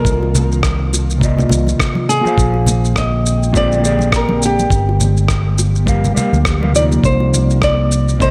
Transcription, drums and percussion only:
0.05 kick, shaker
0.23 high bongo
0.35 low conga, shaker
0.52 shaker
0.63 kick, cross-stick, shaker
0.93 high bongo, shaker
1.10 shaker
1.21 kick, shaker
1.38 low conga, shaker
1.49 low conga, shaker
1.67 high conga, shaker
1.80 kick, cross-stick, shaker
1.95 high conga
2.10 shaker
2.25 high conga, shaker
2.38 kick, shaker
2.54 high bongo
2.66 low conga, shaker
2.85 shaker
2.96 kick, cross-stick, shaker
3.26 shaker
3.43 shaker
3.54 kick, shaker
3.72 shaker
3.84 high bongo, shaker
3.99 high conga, shaker
4.12 kick, cross-stick, shaker
4.29 high conga
4.42 shaker
4.59 high conga, shaker
4.70 kick, shaker
4.89 high bongo
5.00 low conga, shaker
5.17 shaker
5.28 kick, cross-stick, shaker
5.58 high bongo, shaker
5.75 shaker
5.87 kick, shaker
6.04 low conga, shaker
6.17 low conga, shaker
6.34 high conga, shaker
6.45 kick, cross-stick, shaker
6.63 high conga
6.75 shaker
6.92 high conga, shaker
7.04 kick, shaker
7.20 high bongo
7.34 low conga, shaker
7.50 shaker
7.62 kick, cross-stick, shaker
7.92 shaker
8.08 shaker
8.20 kick, shaker

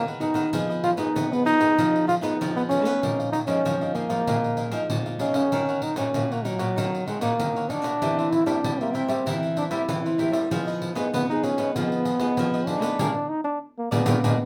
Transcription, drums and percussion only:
0.08 pandeiro
0.21 pandeiro
0.35 pandeiro
0.53 pandeiro
0.71 pandeiro
0.84 pandeiro
0.98 pandeiro
1.16 pandeiro
1.33 pandeiro
1.47 pandeiro
1.61 pandeiro
1.78 pandeiro
1.96 pandeiro
2.09 pandeiro
2.24 pandeiro
2.42 pandeiro
2.57 pandeiro
2.71 pandeiro
2.85 pandeiro
3.03 pandeiro
3.20 pandeiro
3.33 pandeiro
3.48 pandeiro
3.66 pandeiro
3.81 pandeiro
3.95 pandeiro
4.10 pandeiro
4.27 pandeiro
4.44 pandeiro
4.57 pandeiro
4.72 pandeiro
4.90 pandeiro
5.06 pandeiro
5.19 pandeiro
5.34 pandeiro
5.52 pandeiro
5.69 pandeiro
5.82 pandeiro
5.96 pandeiro
6.14 pandeiro
6.32 pandeiro
6.45 pandeiro
6.59 pandeiro
6.78 pandeiro
6.95 pandeiro
7.08 pandeiro
7.21 pandeiro
7.40 pandeiro
7.56 pandeiro
7.70 pandeiro
7.84 pandeiro
8.02 pandeiro
8.19 pandeiro
8.32 pandeiro
8.47 pandeiro
8.64 pandeiro
8.81 pandeiro
8.95 pandeiro
9.09 pandeiro
9.27 pandeiro
9.43 pandeiro
9.57 pandeiro
9.71 pandeiro
9.89 pandeiro
10.06 pandeiro
10.19 pandeiro
10.33 pandeiro
10.51 pandeiro
10.68 pandeiro
10.82 pandeiro
10.96 pandeiro
11.14 pandeiro
11.31 pandeiro
11.44 pandeiro
11.58 pandeiro
11.76 pandeiro
11.92 pandeiro
12.05 pandeiro
12.20 pandeiro
12.37 pandeiro
12.54 pandeiro
12.67 pandeiro
12.82 pandeiro
12.99 pandeiro
13.92 pandeiro
14.06 pandeiro
14.24 pandeiro

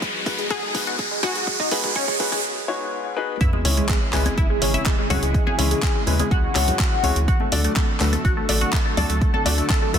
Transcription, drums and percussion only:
0.02 kick, closed hi-hat
0.26 kick, open hi-hat
0.39 closed hi-hat
0.50 kick, closed hi-hat
0.75 kick, open hi-hat
0.87 closed hi-hat
0.99 kick, closed hi-hat
1.23 kick, open hi-hat
1.35 closed hi-hat
1.47 kick, closed hi-hat
1.60 kick
1.71 kick, open hi-hat
1.84 kick, closed hi-hat
1.96 kick, closed hi-hat
2.08 kick
2.20 kick, open hi-hat
2.32 kick, closed hi-hat
3.41 kick, closed hi-hat
3.53 high conga
3.65 open hi-hat
3.77 closed hi-hat
3.89 kick, clap, closed hi-hat, high conga
4.13 clap, open hi-hat
4.26 closed hi-hat, high conga
4.38 kick, closed hi-hat
4.62 open hi-hat
4.74 closed hi-hat, high conga
4.86 kick, clap, closed hi-hat
5.10 open hi-hat, high conga, low conga
5.23 closed hi-hat
5.34 kick, closed hi-hat
5.47 high conga
5.59 open hi-hat
5.71 closed hi-hat
5.83 kick, clap, closed hi-hat, high conga
6.07 open hi-hat, high bongo
6.19 closed hi-hat, high conga
6.31 kick, closed hi-hat
6.55 clap, open hi-hat, high bongo
6.68 closed hi-hat, high conga, low conga
6.79 kick, clap, closed hi-hat
7.03 open hi-hat, high conga
7.16 closed hi-hat
7.28 kick, closed hi-hat
7.40 high conga
7.52 open hi-hat
7.64 closed hi-hat
7.76 kick, clap, closed hi-hat, high conga
8.00 clap, open hi-hat
8.13 closed hi-hat, high conga
8.25 kick, closed hi-hat
8.49 open hi-hat
8.61 closed hi-hat, high conga
8.73 kick, clap, closed hi-hat
8.97 open hi-hat, high conga, low conga
9.10 closed hi-hat
9.21 kick, closed hi-hat
9.34 high conga
9.46 open hi-hat
9.58 closed hi-hat
9.70 kick, clap, closed hi-hat, high conga
9.94 open hi-hat, high bongo

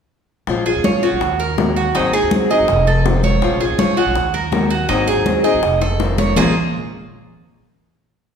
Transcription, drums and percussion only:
0.47 high bongo, high conga
0.66 high conga
0.84 high bongo, high conga
1.21 high bongo
1.40 high conga
1.58 high bongo, low bongo, high conga
1.77 high conga
1.94 high bongo, high conga
2.13 high bongo, high conga
2.31 high bongo, high conga
2.50 high bongo, high conga
2.68 high bongo, high conga
2.87 high bongo, high conga
3.05 high bongo, low bongo, high conga
3.23 high conga
3.42 high bongo, high conga
3.60 high conga
3.79 high bongo, high conga
4.16 high bongo, high conga
4.34 high conga
4.52 high bongo, low bongo, high conga
4.71 high conga
4.89 high bongo, high conga
5.07 high bongo, high conga
5.26 high bongo, high conga
5.45 high bongo, high conga
5.62 high bongo, high conga
5.81 high bongo, high conga
6.00 high bongo, high conga
6.18 low bongo, high conga
6.36 low bongo, low conga

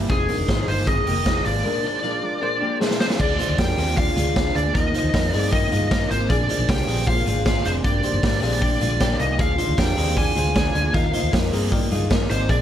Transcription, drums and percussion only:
0.10 kick, closed hi-hat
0.29 open hi-hat
0.48 kick, snare, closed hi-hat
0.68 open hi-hat
0.87 kick, closed hi-hat
1.07 open hi-hat
1.26 kick, snare, closed hi-hat
1.45 open hi-hat
2.81 snare
2.91 snare
3.00 snare
3.10 snare
3.20 kick, crash
3.39 hi-hat pedal, open hi-hat
3.58 kick, snare, hi-hat pedal, open hi-hat
3.78 hi-hat pedal, open hi-hat
3.97 kick, hi-hat pedal, open hi-hat
4.17 hi-hat pedal, open hi-hat
4.36 kick, snare, hi-hat pedal, open hi-hat
4.55 hi-hat pedal, open hi-hat
4.75 kick, hi-hat pedal, open hi-hat
4.94 hi-hat pedal, open hi-hat
5.14 kick, snare, hi-hat pedal, open hi-hat
5.33 hi-hat pedal, open hi-hat
5.53 kick, hi-hat pedal, open hi-hat
5.72 hi-hat pedal, open hi-hat
5.91 kick, snare, hi-hat pedal, open hi-hat
6.10 hi-hat pedal, open hi-hat
6.30 kick, hi-hat pedal, open hi-hat
6.49 hi-hat pedal, open hi-hat
6.69 kick, snare, hi-hat pedal, open hi-hat
6.88 hi-hat pedal, open hi-hat
7.07 kick, hi-hat pedal, open hi-hat
7.26 hi-hat pedal, open hi-hat
7.45 kick, snare, hi-hat pedal, open hi-hat
7.65 hi-hat pedal, open hi-hat
7.84 kick, hi-hat pedal, open hi-hat
8.03 hi-hat pedal, open hi-hat
8.23 kick, snare, hi-hat pedal, open hi-hat
8.43 hi-hat pedal, open hi-hat
8.62 kick, hi-hat pedal, open hi-hat
8.81 hi-hat pedal, open hi-hat
9.00 kick, snare, hi-hat pedal, open hi-hat
9.20 hi-hat pedal, open hi-hat
9.39 kick, hi-hat pedal, open hi-hat
9.58 hi-hat pedal, open hi-hat
9.78 kick, snare, hi-hat pedal, open hi-hat
9.97 hi-hat pedal, open hi-hat
10.17 kick, hi-hat pedal, open hi-hat
10.36 hi-hat pedal, open hi-hat
10.56 kick, snare, hi-hat pedal, open hi-hat
10.75 hi-hat pedal, open hi-hat
10.94 kick, hi-hat pedal, open hi-hat
11.13 hi-hat pedal, open hi-hat
11.33 kick, snare, hi-hat pedal, open hi-hat
11.53 hi-hat pedal, open hi-hat
11.72 kick, hi-hat pedal, open hi-hat
11.91 hi-hat pedal, open hi-hat
12.10 kick, snare, hi-hat pedal, open hi-hat
12.30 hi-hat pedal, open hi-hat
12.49 kick, hi-hat pedal, open hi-hat

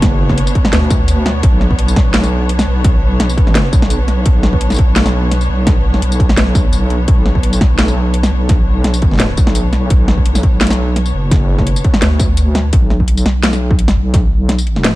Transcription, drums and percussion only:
0.02 kick, snare, closed hi-hat
0.29 kick, snare
0.38 closed hi-hat
0.47 tambourine
0.55 kick, closed hi-hat
0.65 snare
0.73 snare, closed hi-hat
0.90 kick, snare, closed hi-hat, tambourine
1.08 closed hi-hat, tambourine
1.26 snare, closed hi-hat
1.43 kick, closed hi-hat
1.61 snare
1.71 kick
1.79 closed hi-hat
1.88 tambourine
1.96 kick, snare, closed hi-hat
2.14 snare, closed hi-hat
2.23 snare, tambourine
2.49 closed hi-hat
2.59 snare, tambourine
2.85 kick, snare, closed hi-hat
3.20 snare, closed hi-hat
3.29 tambourine
3.38 kick, closed hi-hat
3.47 snare
3.55 snare, closed hi-hat
3.73 kick, tambourine
3.82 snare
3.90 closed hi-hat, tambourine
4.08 snare, closed hi-hat
4.26 kick, closed hi-hat
4.43 snare
4.53 kick
4.61 closed hi-hat
4.70 snare, tambourine
4.72 tambourine
4.74 tambourine
4.76 kick, closed hi-hat, tambourine
4.96 snare, closed hi-hat
5.06 snare, tambourine
5.31 snare, closed hi-hat
5.41 tambourine
5.67 kick, snare, closed hi-hat
5.94 snare
6.02 closed hi-hat
6.12 tambourine
6.20 kick, closed hi-hat
6.29 snare
6.37 snare, closed hi-hat
6.55 kick, snare, tambourine
6.73 tambourine
6.90 closed hi-hat
7.08 kick, closed hi-hat
7.26 snare
7.35 kick
7.43 closed hi-hat
7.53 tambourine
7.61 kick, snare, closed hi-hat
7.79 snare, closed hi-hat
7.88 snare, tambourine
8.14 closed hi-hat
8.23 snare, tambourine
8.49 kick, snare, closed hi-hat
8.84 snare, closed hi-hat
8.94 tambourine
9.02 kick, closed hi-hat
9.11 snare
9.13 snare
9.16 snare
9.18 snare
9.20 snare, closed hi-hat
9.37 kick, tambourine
9.47 snare
9.55 closed hi-hat, tambourine
9.73 snare, closed hi-hat
9.90 kick, closed hi-hat
10.08 snare
10.18 kick
10.26 closed hi-hat
10.35 snare, tambourine
10.43 kick, closed hi-hat
10.61 snare, closed hi-hat
10.67 snare, closed hi-hat, tambourine
10.73 closed hi-hat
10.96 snare, closed hi-hat
11.06 tambourine
11.31 kick, snare, closed hi-hat
11.58 kick, snare
11.67 closed hi-hat
11.76 tambourine
11.84 kick, closed hi-hat
11.94 snare
12.02 snare, closed hi-hat
12.19 kick, snare, closed hi-hat, tambourine
12.37 closed hi-hat, tambourine
12.55 snare, closed hi-hat
12.73 kick, closed hi-hat
12.90 snare
13.00 kick
13.08 closed hi-hat
13.17 tambourine
13.26 snare, closed hi-hat
13.43 snare, closed hi-hat
13.53 snare, tambourine
13.71 kick
13.79 closed hi-hat
13.88 snare, tambourine
14.14 kick, snare, closed hi-hat
14.49 snare, closed hi-hat
14.58 tambourine
14.67 closed hi-hat
14.76 snare
14.84 snare, closed hi-hat

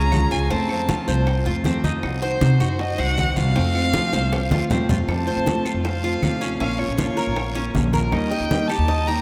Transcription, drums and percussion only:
0.12 high bongo, low bongo, high conga, short guiro, claves
0.31 high bongo, short guiro
0.51 high bongo, high conga, long guiro
0.69 high conga, claves
0.89 high bongo, high conga, short guiro
1.07 high bongo, high conga, short guiro
1.26 high bongo, high conga, long guiro, claves
1.45 high bongo, high conga
1.64 high bongo, low bongo, high conga, short guiro
1.84 high bongo, high conga, short guiro
2.03 high bongo, high conga, long guiro, claves
2.23 high conga
2.41 high bongo, high conga, short guiro
2.60 high bongo, high conga, short guiro, claves
2.79 high bongo, high conga, long guiro
2.99 high bongo, high conga
3.18 high bongo, low bongo, high conga, short guiro, claves
3.36 high bongo, high conga, short guiro
3.56 high bongo, high conga, long guiro
3.75 high conga, claves
3.93 high bongo, high conga, short guiro
4.13 high bongo, high conga, short guiro
4.32 low bongo, high conga, long guiro, claves
4.51 low bongo, high conga
4.70 low bongo, low conga, short guiro
4.89 low bongo, low conga, short guiro
5.09 high bongo, high conga, long guiro, claves
5.28 high conga
5.46 high bongo, high conga, short guiro
5.65 high bongo, high conga, short guiro, claves
5.84 high bongo, high conga, long guiro
6.04 high bongo, high conga
6.23 high bongo, low bongo, high conga, short guiro, claves
6.42 high bongo, short guiro
6.60 high bongo, high conga, long guiro
6.79 high conga, claves
6.98 high bongo, high conga, short guiro
7.17 high bongo, high conga, short guiro
7.36 high bongo, high conga, long guiro, claves
7.55 high bongo, high conga
7.75 high bongo, low bongo, high conga, short guiro
7.93 high bongo, high conga, short guiro
8.12 high bongo, high conga, long guiro, claves
8.31 high conga
8.51 high bongo, high conga, short guiro
8.69 high bongo, high conga, short guiro, claves
8.88 high bongo, high conga, long guiro
9.08 high bongo, high conga

